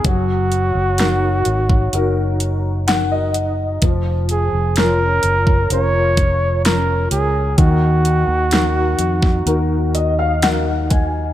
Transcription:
<<
  \new Staff \with { instrumentName = "Flugelhorn" } { \time 4/4 \key ees \minor \tempo 4 = 64 ges'2. r4 | r8 aes'8 bes'4 des''4 bes'8 aes'8 | ges'2. r4 | }
  \new Staff \with { instrumentName = "Grand piano" } { \time 4/4 \key ees \minor << { r2. ges''16 ees''8. | r1 | r2 r8 ees''16 f''16 ges''8 aes''8 | } \\ { ges4 <ees' ges' bes'>4 <ees' ges' bes'>4 <ees' ges' bes'>4 | f4 <des' f' bes'>4 <des' f' bes'>4 <des' f' bes'>4 | ees4 <ees' ges' bes'>4 <ees' ges' bes'>4 <ees' ges' bes'>4 | } >> }
  \new Staff \with { instrumentName = "Fingered electric bass" } { \clef bass \time 4/4 \key ees \minor ges,,8. ges,,8. aes,,8 ges,,2 | f,,8. f,,8. ges,,8 f,,4. des,8 | ees,8. ees,8. f,8 ees,2 | }
  \new DrumStaff \with { instrumentName = "Drums" } \drummode { \time 4/4 <hh bd>8 hh8 <hh sn>8 hh16 bd16 hh8 hh8 <hh sn>8 hh8 | <hh bd>8 hh8 <hh sn>8 hh16 bd16 hh8 <hh bd>8 <hh sn>8 hh8 | <hh bd>8 hh8 <hh sn>8 hh16 <bd sn>16 hh8 hh8 <hh sn>8 <hh bd>8 | }
>>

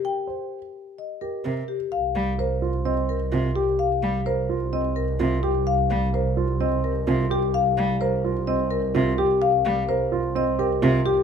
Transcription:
<<
  \new Staff \with { instrumentName = "Marimba" } { \time 4/4 \key ees \major \tempo 4 = 128 g''8 r4. ees''8 bes'8 r8 g'8 | \key c \minor f''8 r8 c''8 r8 ees''8 bes'8 r8 g'8 | f''8 r8 c''8 r8 ees''8 bes'8 r8 g'8 | f''8 r8 c''8 r8 ees''8 bes'8 r8 g'8 |
f''8 r8 c''8 r8 ees''8 bes'8 r8 g'8 | f''8 r8 c''8 r8 ees''8 bes'8 r8 g'8 | }
  \new Staff \with { instrumentName = "Grand piano" } { \time 4/4 \key ees \major r8 c''8 r4. g'8 bes'8 r8 | \key c \minor r4 bes'8 f'8 c'8 r8 f'8 g'8 | r4 bes'8 f'8 c'8 r8 f'8 g'8 | r4 bes'8 f'8 c'8 r8 f'8 g'8 |
r4 bes'8 f'8 c'8 r8 f'8 g'8 | r4 bes'8 f'8 c'8 g'8 f'8 g'8 | }
  \new Staff \with { instrumentName = "Cello" } { \clef bass \time 4/4 \key ees \major r2. c8 r8 | \key c \minor r8 g8 r2 c8 r8 | r8 g8 r2 c8 r8 | r8 g8 r2 c8 r8 |
r8 g8 r2 c8 r8 | r8 g8 r2 c8 r8 | }
  \new Staff \with { instrumentName = "Double bass section" } { \clef bass \time 4/4 \key ees \major r1 | \key c \minor c,1~ | c,1~ | c,1~ |
c,1~ | c,1 | }
>>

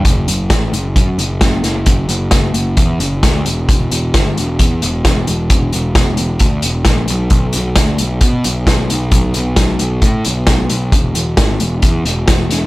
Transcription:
<<
  \new Staff \with { instrumentName = "Picked electric bass" } { \clef bass \time 4/4 \key e \dorian \tempo 4 = 132 fis,,8 fis,,8 a,,8 fis,,8 fis,8 fis,,8 fis,,8 fis,,8 | fis,,8 fis,,8 fis,,8 fis,,8 e,8 fis,,8 d,8 e,,8 | r8 e,,8 g,,8 e,,8 e,8 e,,8 e,,8 e,,8 | e,,8 e,,8 e,,8 e,,8 d,8 e,,8 bes,,8 b,,8 |
b,,8 b,,8 d,8 b,,8 b,8 b,,8 b,,8 b,,8 | b,,8 b,,8 b,,8 b,,8 a,8 b,,8 b,,8 b,,8 | e,,8 e,,8 gis,,8 e,,8 e,8 e,,8 e,,8 e,,8 | }
  \new DrumStaff \with { instrumentName = "Drums" } \drummode { \time 4/4 <hh bd>8 hh8 <hh bd sn>8 hh8 <hh bd>8 hh8 <hh bd sn>8 <hh sn>8 | <hh bd>8 hh8 <hh bd sn>8 hh8 <hh bd>8 hh8 <hh bd sn>8 hh8 | <hh bd>8 hh8 <hh bd sn>8 hh8 <hh bd>8 hh8 <hh bd sn>8 hh8 | <hh bd>8 hh8 <hh bd sn>8 hh8 <hh bd>8 hh8 <hh bd sn>8 hh8 |
<hh bd>8 hh8 <hh bd sn>8 hh8 <hh bd>8 hh8 <hh bd sn>8 hh8 | <hh bd>8 hh8 <hh bd sn>8 hh8 <hh bd>8 hh8 <hh bd sn>8 hh8 | <hh bd>8 hh8 <hh bd sn>8 hh8 <hh bd>8 hh8 <hh bd sn>8 <hh sn>8 | }
>>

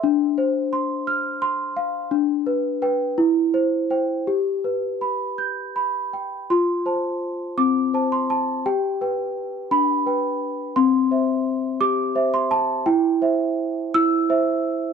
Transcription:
\new Staff \with { instrumentName = "Celesta" } { \time 6/8 \key c \major \tempo 4. = 57 << { r2. | r2. | r2. | c'''4. d'''8. c'''16 a''8 |
g''4. b''4. | c'''4. d'''8. c'''16 a''8 | g''4. e'''4. | } \\ { d'8 c''8 c'''8 f'''8 c'''8 f''8 | d'8 b'8 <b' g''>8 e'8 c''8 <c'' g''>8 | g'8 b'8 b''8 g'''8 b''8 g''8 | f'8 <c'' a''>4 c'8 <c'' a''>4 |
g'8 <b' g''>4 d'8 <b' g''>4 | c'8 <c'' e''>4 g'8 <c'' e''>4 | e'8 <c'' e''>4 e'8 <c'' e''>4 | } >> }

